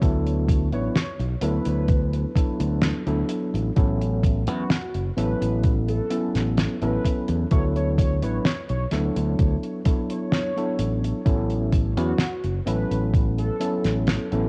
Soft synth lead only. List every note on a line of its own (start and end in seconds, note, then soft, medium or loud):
0.73 0.87 C#5 medium
0.95 1.11 C#5 medium
1.42 2.36 B4 loud
4.48 5.04 F#4 loud
5.17 5.74 B4 medium
5.89 6.44 A4 medium
6.82 7.38 B4 medium
7.51 7.67 C#5 medium
7.76 7.90 C#5 medium
7.98 8.14 C#5 medium
8.23 8.37 C#5 medium
8.45 8.61 C#5 medium
8.69 8.84 C#5 medium
10.10 11.36 C#5 loud
11.98 12.53 F#4 loud
12.67 13.24 B4 medium
13.39 13.94 A4 loud